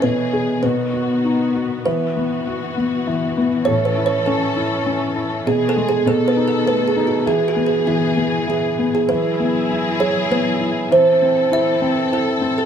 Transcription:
Already playing: E3
0.02 B2 B3 G#4 B4
0.33 G#4
0.63 B2 D#3 F#4 B4
0.93 F#4
1.25 D#4
1.55 F#4
1.86 E3 F#4 B4
2.16 B3
2.47 F#4
2.77 B3
3.07 E3
3.37 B3
3.65 A2 C#4 A4 C#5
3.85 B4
3.97 E4
4.06 C#5
4.26 C#4 A4
4.56 E4
4.86 C#4
5.16 E4
5.46 B2 B3 G#4
5.69 A4
5.76 G#3
5.89 G#4
6.06 B2 D#3 A4
6.28 B4
6.36 D#4
6.48 A4
6.66 A3 B4
6.88 G#4
6.96 D#4
7.07 F#4
7.26 E3 G#4
7.48 F#4
7.56 B3
7.66 G#4
7.87 E3 E4
8.17 B3
8.47 E3 G#4
8.79 B3
8.95 G#4
9.09 E3 F#3 E4 G#4 B4
9.40 B3
9.70 E4
10.00 G#4 C#5
10.31 B3 B4
10.60 E4
10.91 E3 C4 A4 C5
11.22 C4
11.51 E4 E5
11.81 C4
12.12 E4 A4
12.41 C4
12.58 A4

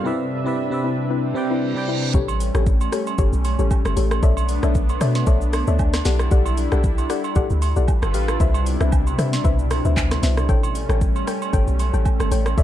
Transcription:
Already playing: G3
0.04 C3 C4 D4 E4 B4 D5 E5
0.45 C3 C4 E4 B4 D5 E5
0.70 C3 C4 B4 D5 E5
0.84 C4 E4 B4
1.10 C4 E4 B4, reverse cymbal
1.34 C3 C4 B4 D5 G5
1.50 C4 E4 B4
1.74 C3 C4 B4 D5 G5
1.88 C4 E4 B4
2.14 A1 G3 A3 C#4 G4 A4 C#5, kick, shaker
2.28 high agogo, shaker
2.40 open hi-hat, shaker
2.54 A1 G4 A4 C#5, cross-stick, shaker
2.66 kick, shaker
2.81 high agogo, shaker
2.92 G4 A4 C#5, cross-stick, open hi-hat, shaker
3.07 high agogo, shaker
3.18 G1 G4 A4 C#5, kick, shaker
3.33 B1, shaker
3.45 open hi-hat, high agogo, shaker
3.59 A1 G4 A4 C#5, shaker
3.71 kick, low woodblock, shaker
3.85 G1, cross-stick, high agogo, shaker
3.96 A1 G4 A4 C#5, open hi-hat, shaker
4.11 cross-stick, high agogo, shaker
4.23 B1 B3 D4 A4 C#5 D5 E5, kick, shaker
4.37 high agogo, shaker
4.49 open hi-hat, shaker
4.63 B1 A4 C#5 D5 E5, cross-stick, shaker
4.75 kick, shaker
4.89 high agogo, shaker
5.01 B2 A4 C#5 D5 E5, cross-stick, open hi-hat, shaker
5.15 snare, high agogo, shaker
5.27 B1 A4 C#5 D5 E5, kick, shaker
5.41 shaker
5.53 cross-stick, open hi-hat, high agogo, shaker
5.67 D2 A4 C#5 D5 E5, shaker
5.79 kick, low woodblock, shaker
5.93 cross-stick, snare, high agogo, shaker
6.05 B1 G3 E4 G4 A4 D5 F#5, snare, open hi-hat, shaker
6.19 cross-stick, high agogo, shaker
6.31 B1 G4 A4 D5 F#5, kick, shaker
6.46 high agogo, shaker
6.57 open hi-hat, shaker
6.72 B1 G4 A4 D5 F#5, cross-stick, shaker
6.84 kick, shaker
6.98 high agogo, shaker
7.09 G4 A4 D5 F#5, cross-stick, open hi-hat, shaker
7.24 high agogo, shaker
7.36 A1 G4 A4 D5 F#5, kick, shaker
7.50 D2, shaker
7.62 open hi-hat, high agogo, shaker
7.76 B1 G4 A4 D5 F#5, shaker
7.88 G3 D4 F4 A4 B4, kick, low woodblock, shaker
8.02 G1, cross-stick, high agogo, shaker
8.14 A1 G4 B4 F5, open hi-hat, shaker
8.28 cross-stick, high agogo, shaker
8.40 C2 B2 C3 E4 B4 C5 E5, kick, shaker
8.54 high agogo, shaker
8.66 open hi-hat, shaker
8.80 C2 B4 C5 E5, cross-stick, shaker
8.92 kick, low woodblock, shaker
9.07 high agogo, shaker
9.18 C3 B4 C5 E5, cross-stick, open hi-hat, shaker
9.33 snare, high agogo, shaker
9.44 C2 B4 C5 E5, kick, shaker
9.59 shaker
9.71 cross-stick, open hi-hat, high agogo, shaker
9.85 D2 B4 C5 E5, shaker
9.97 kick, clap, low woodblock, shaker
10.11 cross-stick, snare, high agogo, shaker
10.23 C2 B4 C5 E5, snare, open hi-hat, shaker
10.37 cross-stick, high agogo, shaker
10.49 A1 G3 A3 C#4 A4 C#5 G5, kick, shaker
10.63 high agogo, shaker
10.75 open hi-hat, shaker
10.89 A1 A4 C#5 G5, cross-stick, shaker
11.01 kick, shaker
11.16 high agogo, shaker
11.27 A4 C#5 G5, cross-stick, open hi-hat, shaker
11.42 high agogo, shaker
11.53 G1 A4 C#5 G5, kick, shaker
11.68 B1, shaker
11.79 open hi-hat, high agogo, shaker
11.93 A1 A4 C#5 G5, shaker
12.05 kick, low woodblock, shaker
12.20 G1, cross-stick, high agogo, shaker
12.31 A1 A4 C#5 G5, open hi-hat, shaker
12.46 cross-stick, high agogo, shaker
12.57 B1 B3 D4 A4 C#5 D5 E5, kick, shaker

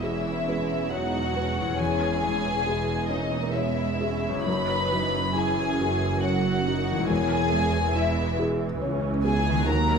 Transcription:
Already playing: E1 E2 B3 C#4 G#4 B4
0.01 E3 C#4 E4 G#4 E5
0.46 G#3 B4
0.91 F#3 D#4 F#4 C#5 F#5
1.35 C#4 B4
1.61 E2
1.65 C#4
1.69 G#4
1.74 C#5
1.78 E1 E2 E3 C#4 G#4 G#5
2.23 G#3
2.67 E3 G#3 G#4
3.09 A#3 C#4 D#4 D#5
3.53 G#3 B3 E4 C#5 E5
3.99 C#4 G#4
4.29 F#2
4.33 C#4
4.38 E4
4.42 F#3 D#4 B4 C#5 B5
4.47 F#1 F#2
4.89 E3 F#3
5.34 E3 C#4 E4 G#4 G#5
5.79 F#4
6.21 F#3 A#3 F#4 C#5 F#5
6.66 D#4 F#4
6.92 E3
6.97 G#3
7.01 E4
7.05 E1 G#4 C#5 G#5
7.10 E2 E3
7.53 G#3
7.95 G#3 E4 E5
8.39 G#4
8.82 C#2 C#4 C#5
9.25 B3 G#4 G#5
9.49 D#3
9.54 F#3
9.58 F#4
9.62 A#4
9.66 D#2 F#3 A#3 A#4 A#5

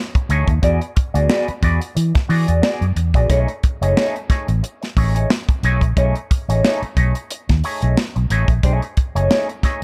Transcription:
0.15 muted clean electric guitar stroke, kick, closed hi-hat
0.29 D2 A3 D#4 G#4 C#5, closed hi-hat
0.48 D#2, muted clean electric guitar stroke, kick, closed hi-hat
0.62 E2 B3 F#4 G#4 D5, kick, closed hi-hat
0.81 muted clean electric guitar stroke, closed hi-hat
0.96 muted clean electric guitar stroke, kick, closed hi-hat
1.14 D2 B3 F#4 G#4 D5, closed hi-hat
1.29 B3 F#4 G#4 D5, snare
1.48 muted fingered electric bass stroke, muted clean electric guitar stroke, closed hi-hat
1.63 E2 B3 F#4 G#4 D5, kick, closed hi-hat
1.81 muted clean electric guitar stroke, closed hi-hat
1.95 E3, muted clean electric guitar stroke, closed hi-hat
2.15 muted clean electric guitar stroke, kick, snare, closed hi-hat
2.28 E3 B3 F#4 G#4 D5, open hi-hat
2.48 E2 B3 F#4 G#4 D5, closed hi-hat
2.62 B3 F#4 G#4 D5, snare
2.81 F#2, closed hi-hat
2.96 E2, muted clean electric guitar stroke, closed hi-hat
3.14 A#1 B3 F#4 G#4 D5, kick, closed hi-hat
3.29 B1 A3 D#4 G#4 C#5, kick, closed hi-hat
3.48 muted clean electric guitar stroke, closed hi-hat
3.63 muted clean electric guitar stroke, kick, closed hi-hat
3.81 F#1 A3 D#4 G#4 C#5, closed hi-hat
3.97 A3 D#4 G#4 C#5, snare
4.15 muted clean electric guitar stroke, closed hi-hat
4.29 A3 D#4 G#4 C#5, muted fingered electric bass stroke, kick, snare, closed hi-hat
4.48 A1, muted clean electric guitar stroke, closed hi-hat
4.63 muted clean electric guitar stroke, closed hi-hat
4.82 muted clean electric guitar stroke, snare, closed hi-hat
4.97 A1 A3 D#4 G#4 C#5, kick, open hi-hat
5.15 A3 D#4 G#4 C#5, closed hi-hat
5.30 snare
5.49 muted clean electric guitar stroke, kick, closed hi-hat
5.63 B1 A3 D#4 G#4 C#5, closed hi-hat
5.81 A#1, muted clean electric guitar stroke, kick, closed hi-hat
5.97 B1 A3 D#4 G#4 C#5, kick, closed hi-hat
6.16 muted clean electric guitar stroke, closed hi-hat
6.31 muted clean electric guitar stroke, kick, closed hi-hat
6.49 A1 A3 D#4 G#4 C#5, closed hi-hat
6.64 A3 D#4 G#4 C#5, snare
6.82 muted fingered electric bass stroke, muted clean electric guitar stroke, closed hi-hat
6.97 B1 A3 D#4 G#4 C#5, kick, closed hi-hat
7.15 muted clean electric guitar stroke, closed hi-hat
7.31 muted clean electric guitar stroke, closed hi-hat
7.49 D#2, muted clean electric guitar stroke, kick, snare, closed hi-hat
7.64 A3 D#4 G#4 C#5, open hi-hat
7.82 B1 A3 D#4 G#4 C#5, closed hi-hat
7.97 snare
8.16 B1, muted clean electric guitar stroke, closed hi-hat
8.30 A1 A3 D#4 G#4 C#5, closed hi-hat
8.48 A#1, muted clean electric guitar stroke, kick, closed hi-hat
8.63 B1 A3 D#4 G#4 C#5, kick, closed hi-hat
8.82 muted clean electric guitar stroke, closed hi-hat
8.97 muted clean electric guitar stroke, kick, closed hi-hat
9.15 F#1 A3 D#4 G#4 C#5, closed hi-hat
9.30 A3 D#4 G#4 C#5, snare
9.49 muted clean electric guitar stroke, closed hi-hat
9.63 A3 D#4 G#4 C#5, muted fingered electric bass stroke, kick, snare, closed hi-hat

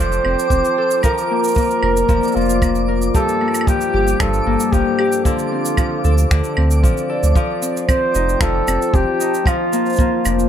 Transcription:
Already playing: C4 F4 A4 C5 G5 A5 D6
0.00 F1 F3
0.12 cabasa
0.25 F1 C4, claves
0.39 cabasa
0.50 F1 C4, kick, cabasa
0.65 cabasa
0.78 A4
0.91 cabasa
1.03 F3 A#3 A#4, kick, cabasa, claves
1.18 cabasa
1.30 A#3
1.44 cabasa
1.48 cabasa
1.51 D5, cabasa
1.54 A#3, kick, cabasa
1.57 cabasa
1.64 cabasa
1.67 cabasa
1.71 cabasa
1.83 F1 A#4, claves
1.97 cabasa
2.09 F1 F3, kick, cabasa
2.23 cabasa
2.28 cabasa
2.32 F1 A#3 F4, cabasa
2.37 cabasa
2.41 cabasa
2.45 cabasa
2.50 cabasa
2.62 A#3, kick, cabasa, claves
2.75 cabasa
2.88 A#4
3.02 cabasa
3.15 G2 G3 G4 A4, kick, cabasa
3.29 cabasa
3.41 A#3 D4, claves
3.48 claves
3.54 A4, cabasa, claves
3.61 claves
3.67 F3 G4, kick, cabasa
3.81 cabasa
3.94 G1 G4
4.07 A#3, cabasa
4.20 G1 G2 A4, finger snap, kick, cabasa, claves
4.34 cabasa
4.46 G1 A#3
4.60 cabasa
4.72 G1 F3 G4, kick, cabasa
4.99 G4, claves
5.12 cabasa
5.25 D3 F4 A4, kick, cabasa
5.39 cabasa
5.52 C4
5.65 cabasa
5.77 F3, kick, cabasa, claves
6.04 D2 A4 D5, cabasa
6.11 F5
6.18 cabasa
6.31 D2 D3, finger snap, kick, cabasa
6.44 cabasa
6.57 D2 C4, claves
6.71 cabasa
6.83 A1 F3, kick, cabasa
6.97 cabasa
7.09 A4
7.23 D2, cabasa
7.36 F3 F4, kick, cabasa
7.56 G5
7.62 C4, cabasa
7.77 cabasa
7.88 C4 C5, kick, cabasa, claves
8.15 F1 D#4, cabasa
8.29 A5, cabasa
8.41 F1 F3 A4, finger snap, kick, cabasa
8.67 F1 C4, cabasa, claves
8.82 cabasa
8.94 F1 C4 G4, kick, cabasa
9.20 D#4, cabasa
9.34 cabasa
9.46 F3 A#3 F4, kick, cabasa, claves
9.73 A#3, cabasa
9.82 D5, cabasa
9.90 cabasa
9.93 cabasa
9.96 A#3, kick, cabasa
10.00 cabasa
10.25 F1 D4, cabasa, claves
10.39 cabasa

